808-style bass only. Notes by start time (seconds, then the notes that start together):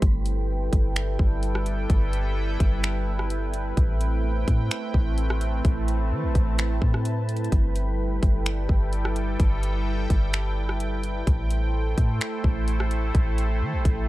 0.02 G1
0.73 G1
1.19 G1
1.90 G1
2.60 G1
3.77 A1
4.48 A2
4.94 A1
5.65 A1
6.12 E3
6.23 A1
6.35 A1
6.82 A2
7.52 G1
8.23 G1
8.69 G1
9.40 G1
10.10 G1
11.27 A1
11.98 A2
12.44 A1
13.15 A1
13.62 E3
13.73 A1
13.85 A1